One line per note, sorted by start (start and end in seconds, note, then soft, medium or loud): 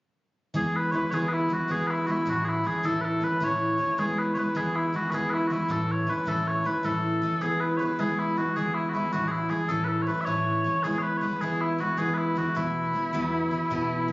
0.54 0.92 E3 medium
0.54 0.92 G#3 medium
0.54 0.93 B3 medium
0.54 0.95 E4 medium
0.54 0.76 G#4 medium
0.76 0.91 B4 medium
0.91 1.10 E3 medium
0.91 1.11 G#3 medium
0.91 1.12 B3 medium
0.91 1.11 B4 medium
0.91 0.95 C#5 medium
0.95 1.13 E4 medium
1.11 1.48 E3 medium
1.11 1.49 G#3 medium
1.11 1.50 B3 medium
1.11 1.52 E4 medium
1.11 1.29 G#4 medium
1.11 1.14 C#5 medium
1.29 1.33 B4 medium
1.33 1.53 E4 medium
1.49 1.67 E3 soft
1.49 1.68 G#3 medium
1.49 1.69 B3 medium
1.49 1.70 E4 medium
1.53 1.71 F#4 medium
1.68 2.06 E3 medium
1.68 2.07 G#3 medium
1.68 2.08 B3 medium
1.68 2.09 E4 medium
1.68 1.87 G#4 loud
1.87 2.06 E4 medium
1.87 1.90 B4 medium
2.06 2.25 E3 medium
2.06 2.27 G#3 medium
2.06 2.27 B3 medium
2.06 2.27 E4 medium
2.06 2.11 F#4 medium
2.11 2.29 E4 medium
2.25 2.64 A2 medium
2.25 2.64 E3 medium
2.25 2.64 A3 medium
2.25 2.65 C#4 medium
2.25 2.67 E4 medium
2.25 2.45 F#4 medium
2.45 2.67 E4 medium
2.45 2.48 G#4 medium
2.64 2.82 E3 medium
2.64 2.83 A3 medium
2.64 2.83 C#4 medium
2.64 2.84 E4 medium
2.64 2.85 G#4 medium
2.83 3.21 A2 medium
2.83 3.20 E3 medium
2.83 3.21 A3 medium
2.83 3.22 C#4 medium
2.83 3.23 E4 medium
2.83 3.01 A4 loud
3.01 3.24 A4 medium
3.01 3.05 B4 medium
3.21 3.40 E3 medium
3.21 3.40 A3 medium
3.21 3.41 C#4 medium
3.21 3.41 E4 medium
3.21 3.44 B4 loud
3.40 3.79 A2 medium
3.40 3.77 E3 medium
3.40 3.78 A3 medium
3.40 3.79 C#4 medium
3.40 3.81 E4 medium
3.40 3.99 C#5 loud
3.78 3.97 E3 medium
3.78 3.98 A3 medium
3.78 3.99 C#4 medium
3.78 3.99 E4 medium
3.98 4.35 E3 medium
3.98 4.35 G#3 medium
3.98 4.36 B3 medium
3.98 4.38 E4 medium
3.98 4.19 G#4 medium
4.19 4.34 B4 medium
4.34 4.54 E3 medium
4.34 4.54 G#3 medium
4.34 4.56 B3 medium
4.34 4.57 B4 medium
4.34 4.38 C#5 medium
4.39 4.56 E4 medium
4.55 4.92 E3 medium
4.55 4.93 G#3 medium
4.55 4.93 B3 medium
4.55 4.96 E4 medium
4.55 4.75 G#4 medium
4.75 4.96 E4 medium
4.93 5.11 E3 medium
4.93 5.12 G#3 medium
4.93 5.12 B3 medium
4.93 5.13 E4 medium
4.93 5.11 F#4 medium
5.11 5.50 E3 medium
5.11 5.50 G#3 medium
5.11 5.51 B3 medium
5.11 5.53 E4 medium
5.11 5.30 G#4 medium
5.11 5.15 B4 medium
5.30 5.47 E4 medium
5.30 5.34 B4 medium
5.47 5.68 E3 medium
5.47 5.52 F#4 medium
5.51 5.70 G#3 medium
5.51 5.70 B3 medium
5.51 5.71 E4 medium
5.51 5.70 E4 medium
5.68 6.07 A2 medium
5.68 6.06 E3 medium
5.68 6.07 A3 medium
5.68 6.08 C#4 medium
5.68 6.10 E4 medium
5.68 5.91 A4 medium
5.91 6.09 C#5 medium
6.07 6.25 E3 medium
6.07 6.26 A3 medium
6.07 6.26 C#4 medium
6.07 6.27 E4 medium
6.07 6.28 B4 medium
6.26 6.64 A2 medium
6.26 6.64 E3 medium
6.26 6.64 A3 medium
6.26 6.65 C#4 medium
6.26 6.67 E4 medium
6.26 6.48 A4 medium
6.48 6.66 C#5 medium
6.64 6.83 E3 soft
6.64 6.83 A3 medium
6.64 6.84 C#4 medium
6.64 6.84 E4 medium
6.64 6.85 B4 medium
6.83 7.22 A2 medium
6.83 7.21 E3 medium
6.83 7.22 A3 medium
6.83 7.23 C#4 medium
6.83 7.25 E4 medium
6.83 7.42 A4 medium
7.22 7.40 E3 medium
7.22 7.42 A3 medium
7.22 7.42 C#4 medium
7.22 7.42 E4 medium
7.41 7.79 E3 medium
7.41 7.79 G#3 medium
7.41 7.80 B3 medium
7.41 7.82 E4 medium
7.41 7.60 G#4 medium
7.60 7.77 B4 medium
7.77 7.97 E3 medium
7.77 7.98 G#3 medium
7.77 8.00 B4 medium
7.77 7.80 C#5 medium
7.81 7.99 B3 medium
7.81 7.99 E4 medium
7.99 8.36 E3 medium
7.99 8.37 G#3 medium
7.99 8.37 B3 medium
7.99 8.39 E4 medium
7.99 8.19 G#4 medium
8.19 8.37 E4 medium
8.37 8.55 E3 medium
8.37 8.56 G#3 medium
8.37 8.56 B3 medium
8.37 8.57 E4 medium
8.37 8.56 F#4 medium
8.56 8.93 E3 medium
8.56 8.93 G#3 medium
8.56 8.95 B3 medium
8.56 8.96 E4 medium
8.56 8.74 G#4 medium
8.74 8.89 E4 medium
8.89 8.94 F#4 medium
8.93 9.12 E3 medium
8.93 9.13 G#3 medium
8.93 9.14 B3 medium
8.93 9.12 E4 medium
8.93 9.14 E4 medium
9.12 9.51 A2 medium
9.12 9.49 E3 medium
9.12 9.49 A3 medium
9.12 9.50 C#4 medium
9.12 9.52 E4 medium
9.12 9.28 F#4 medium
9.28 9.50 E4 medium
9.28 9.31 G#4 medium
9.49 9.68 E3 medium
9.49 9.69 A3 medium
9.49 9.69 C#4 medium
9.49 9.70 E4 medium
9.49 9.69 G#4 medium
9.69 10.07 A2 medium
9.69 10.06 E3 medium
9.69 10.07 A3 medium
9.69 10.08 C#4 medium
9.69 10.10 E4 medium
9.69 9.84 A4 medium
9.84 10.02 A4 medium
9.84 9.88 B4 medium
10.02 10.07 C#5 medium
10.07 10.25 E3 medium
10.07 10.26 A3 medium
10.07 10.27 C#4 medium
10.07 10.27 E4 medium
10.07 10.21 B4 medium
10.21 10.25 E5 medium
10.25 10.65 A2 medium
10.25 10.64 E3 medium
10.25 10.65 A3 medium
10.25 10.66 C#4 medium
10.25 10.67 E4 medium
10.25 10.83 C#5 medium
10.64 10.83 E3 medium
10.64 10.84 A3 medium
10.64 10.85 C#4 medium
10.64 10.85 E4 medium
10.83 11.21 E3 medium
10.83 11.21 G#3 medium
10.83 11.23 B3 medium
10.83 11.24 E4 medium
10.83 10.99 G#4 medium
10.99 11.17 B4 medium
10.99 11.02 C#5 medium
11.17 11.22 C#5 medium
11.21 11.40 E3 medium
11.21 11.41 G#3 medium
11.21 11.42 B3 medium
11.21 11.42 E4 medium
11.21 11.41 B4 medium
11.41 11.78 E3 medium
11.41 11.79 G#3 medium
11.41 11.81 B3 medium
11.41 11.81 E4 medium
11.41 11.61 G#4 medium
11.61 11.80 E4 medium
11.78 11.96 E3 medium
11.78 11.97 G#3 medium
11.78 11.98 B3 medium
11.78 11.98 E4 medium
11.78 11.98 F#4 medium
11.97 12.35 E3 medium
11.97 12.35 G#3 medium
11.97 12.38 B3 medium
11.97 12.39 E4 medium
11.97 12.14 G#4 medium
12.14 12.38 E4 medium
12.14 12.18 B4 medium
12.35 12.55 E3 medium
12.35 12.56 G#3 medium
12.35 12.55 B3 medium
12.35 12.56 E4 medium
12.35 12.56 F#4 medium
12.55 12.93 E2 medium
12.55 12.94 B2 medium
12.55 12.93 E3 medium
12.55 12.94 A3 medium
12.55 12.95 B3 medium
12.55 14.12 E4 medium
12.55 12.96 E4 medium
12.93 13.13 E3 medium
12.93 13.13 A3 soft
12.93 13.13 B3 medium
12.93 13.14 E4 medium
13.13 13.51 E2 medium
13.13 13.51 B2 medium
13.13 13.51 E3 medium
13.13 13.51 A3 medium
13.13 13.53 B3 medium
13.13 13.54 E4 medium
13.51 13.70 E3 medium
13.51 13.70 A3 medium
13.51 13.71 B3 medium
13.51 13.72 E4 medium
13.70 14.08 E2 medium
13.70 14.09 B2 medium
13.70 14.08 E3 medium
13.70 14.08 A3 medium
13.70 14.09 B3 medium
13.70 14.11 E4 medium
14.08 14.12 E3 medium